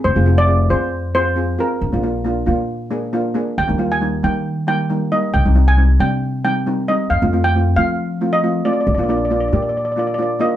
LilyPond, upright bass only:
\new Staff \with { instrumentName = "Upright bass" } { \clef bass \time 4/4 \key f \dorian \tempo 4 = 136 f,,16 f,,4~ f,,16 f,2 r8 | bes,,16 bes,,4~ bes,,16 bes,2 r8 | ees,16 ees,4~ ees,16 ees2 r8 | c,16 c,4~ c,16 c2 r8 |
f,16 f,4~ f,16 f2 r8 | bes,,16 bes,,4~ bes,,16 bes,2 r8 | }